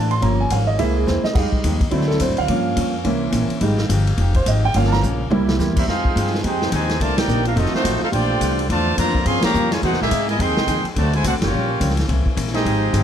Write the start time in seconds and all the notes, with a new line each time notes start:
Already playing: A1 A#2 E3 A3 C4 D4 E4 A4 D5 A5
0.11 C6, ride
0.21 G1 G2 F3 A#3 C#4 F4 G4 C#5 A#5, kick, ride
0.25 C#4
0.41 G#5
0.50 G#1 G2 F3 A#3 C#4 F5, kick, hi-hat pedal, ride
0.67 D#5
0.77 C2 C3 G#3 A#3 E4 G#4 C5 E5, kick, ride
0.82 G#4
0.96 G#4
1.07 E2 C3 A#3 E4 G#4 C5, snare, hi-hat pedal
1.24 D#5, muted upright bass stroke, snare
1.33 F2 F3 G3 G#3 D#4 F4 G4 D#5 F5, kick, snare, crash
1.38 G#3 D#4 G4
1.52 muted upright bass stroke, kick
1.64 D#2 F3 G#3 D#4 G4, hi-hat pedal, ride
1.81 kick, ride
1.91 D2 D3 F#3 A3 C4 E4 F#4 A4 D5, kick, ride
1.96 F#4
2.01 snare
2.08 A4, snare
2.20 A2 D3 A3 C4 F#4 C5, kick, hi-hat pedal, ride
2.29 F#2
2.37 D2 F5, ride
2.48 G2 F3 A#3 C#4 G4 A#4 F5, kick, ride
2.53 C#4
2.76 F2 G2 F3 A#3 C#4, kick, hi-hat pedal, ride
3.04 C2 C3 E3 A#3 C#4 C5 E5, kick, ride
3.31 A#1 C3 E3 A#3 C#4, kick, hi-hat pedal, ride
3.49 muted upright bass stroke, ride
3.60 G#1 F3 G3 G#3 D#4 G4 G#4 F5, kick, ride
3.78 snare
3.89 G1 F3 G#3 D#4 G4, kick, hi-hat pedal, ride
4.07 ride
4.17 F1 F3 G#3 D#4 G4, kick, ride
4.34 C5, kick, ride
4.46 G#1 F3 G#3 D#4 G4 D#5, kick, hi-hat pedal, ride
4.65 G5
4.74 G1 G2 F3 A#3 C#4 G4 A#4 F5, kick, ride
4.78 C#4
4.84 A5, snare
4.92 A#5, snare
5.02 A#1 G2 F3 A#3 C#4, hi-hat pedal, mid tom
5.29 C2 C3 G3 A#3 C4 E4 A#4 E5, mid tom
5.33 E4
5.49 snare
5.59 E2 C3 G3 A#3 E4, snare, hi-hat pedal
5.76 G3 A#3 C4 E4 G4 A#4 E5, kick, crash
5.86 F2 D#3 F3 G#3 C4 D#4 F4 G#4 C5 F5, kick, snare
5.91 G4
6.05 kick
6.16 G2 F3 G#3 D#4 G4, kick, hi-hat pedal, ride
6.27 snare
6.35 snare
6.42 F2 F3 G#3 C4 D#4 G4 G#4 C5 G5, kick, ride
6.46 G4
6.62 snare
6.70 D#2 C3 D#3 F3 G#3 D#4 G4 C5 G#5, kick, hi-hat pedal, ride
6.89 snare, ride
6.99 C2 C3 D3 D#3 A3 A#3 C4 D4 F4 A#4 D5 A5, kick, ride
7.17 A#3 D#4 G4 A#4 D5 G5, snare, ride
7.27 A#1 C3 D#3 A#3 D4, hi-hat pedal
7.45 D4 F4 G4 A#4 F5, ride
7.52 F3 A3 C4 D#4 F4
7.56 F1 D#3 F#3 A3 C4 D#4 F#4 A4 D#5, kick, ride
7.65 snare
7.71 D#3 A3 C4, muted upright bass stroke
7.75 A3 D#4 F#4 C5, snare
7.84 A1 F3 A3 D#4 F#4, kick, hi-hat pedal, ride
7.99 A3 C4 D#4 F4 A4 C5 F5, muted upright bass stroke
8.11 A#1 A#2 D3 E3 A3 C4 D4 F4 G4 C5 D5 G5, kick, ride
8.40 C2 A#2 E3 A3 D4, kick, hi-hat pedal, ride
8.59 ride
8.68 E2 A#2 D3 E3 F3 A3 D4 F4 C5 D5 A5, kick, ride
8.96 F2 A#2 D3 E3 F3 A3 A#3 D4 F4 C5 D5 A#5, kick, hi-hat pedal, ride
9.15 kick
9.25 G2 C#3 F3 G3 A#3 C4 C#4 F4 G#4 C#5 F5 C6, kick, ride
9.41 C#3 F3 A#3 G4 C#5 F5 A#5, muted upright bass stroke, snare, ride
9.53 F2 G2 F3 A#3 C#4, hi-hat pedal
9.72 G#3 F4 A#4 C#5 G#5, snare, ride
9.81 E2 C3 G#3 A#3 D#4 E4 F#4 G#4 C5 F#5, kick, ride
9.93 C2, snare
10.01 A#1 G#3 A#3 D#4 E4 G#4 E5, snare
10.11 G#2 C3 G#3 A#3 E4, kick, hi-hat pedal, ride
10.28 A#2 E3 G#3 E4 A#4 D#5 G#5, ride
10.38 F2 D#3 F3 G#3 C4 D#4 G#4 D#5 G5 C6, kick, ride
10.42 G4
10.49 D#2
10.57 C2, snare
10.67 D#2 F3 G#3 D#4 G4, kick, hi-hat pedal, ride
10.84 muted upright bass stroke, ride
10.91 D3 A3 C4 F#4
10.95 D2 C3 D3 F#3 A3 C4 F#4 C5 D5 A5, kick, ride
11.13 G#3 E4 A4 C5 G#5, ride
11.23 C2 D3 A3 C4 F#4 A4 C5 F#5, kick, hi-hat pedal, ride
11.27 D4
11.33 A1
11.42 F#1 A#3 C#4 F4 G4 A#4 C#5 G5, snare, ride
11.50 A#1 G2 C#3 F3 G3 A#3 F4
11.54 A#3 C#4
11.80 C#2 G2 F3 A#3 C#4, kick, hi-hat pedal, ride
11.90 snare
11.97 snare, ride
12.07 C2 C3 E3 A#3 C4 C#4 E4, kick, ride
12.26 muted upright bass stroke, kick
12.35 A#1 C3 E3 A#3 C#4, kick, hi-hat pedal, ride
12.47 snare
12.54 G#3 C4 D#4 G4 G#4 D#5, snare, ride
12.63 G#1 F3 G#3 D#4 F4 G4, kick, ride
12.93 G1 F3 G#3 D#4 G4, kick, hi-hat pedal, ride